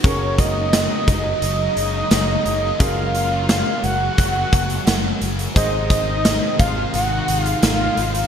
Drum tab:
HH |x-x-x-x-x-x-x-x-|x-x-x-x-x-xxx-xx|x-x-x-x-x-xxx-xx|
TB |----x-------x---|----x-------x---|----x-------x---|
SD |----o-------o---|----o-------o---|----o-------o---|
BD |o-o---o---------|o-------o-o-----|o-o---o---------|